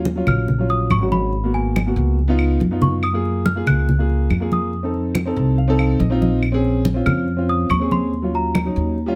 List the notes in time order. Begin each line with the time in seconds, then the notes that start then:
Already playing: D#2
0.05 high conga
0.16 F#3 C#4 F4
0.27 A#1 F6, low conga, claves
0.48 high conga, low conga
0.58 F#3 C#4 F4
0.69 D#6, high conga
0.90 G#1 C#6, high conga, claves
1.01 F#3 C#4 F#4
1.12 B5, high conga
1.33 high conga
1.44 A#3 B3 F#4
1.54 G#5, high conga
1.76 high conga, claves
1.86 A#3 B3 F#4
1.96 C#2, high conga
2.19 high conga
2.28 B3 D#4 F4
2.39 high conga, claves
2.60 F#2, high conga
2.71 B3 D#4 F4
2.82 C#6, low conga
3.03 D#6, high conga, claves
3.13 A#3 F4 G#4
3.25 high conga
3.46 F6, high conga
3.55 A#3 F4 G#4
3.66 C#2 F#6, low conga, claves
3.89 high conga, low conga
3.98 A#3 F4 G#4
4.10 high conga
4.30 F2, high conga, claves
4.40 A#3 F4 G#4
4.52 D#6, high conga
4.73 high conga
4.83 C4 D#4 A4
4.94 high conga
5.15 high conga, claves
5.25 C4 D#4 A4
5.36 C2 A5, high conga
5.58 F5, high conga
5.68 C4 D#4 A4
5.79 F5, high conga, claves
5.99 A#1 D#5, high conga
6.10 C4 D#4 F4
6.21 D#5, high conga
6.43 high conga, claves
6.52 C4 C#4 G#4
6.64 high conga
6.85 high conga
6.94 C4 C#4 F4
7.06 F2 F6, low conga, claves
7.28 high conga
7.37 C4 C#4 F4
7.49 D#6, high conga
7.69 D#2 C#6, high conga, claves
7.80 C4 C#4 G#4
7.91 C6, high conga
8.14 high conga
8.22 F#3 C#4 F4
8.34 A#5, high conga
8.55 high conga, claves
8.64 F#3 C#4 D#4
8.76 D#2, high conga
8.98 high conga
9.06 G3 C#4 F4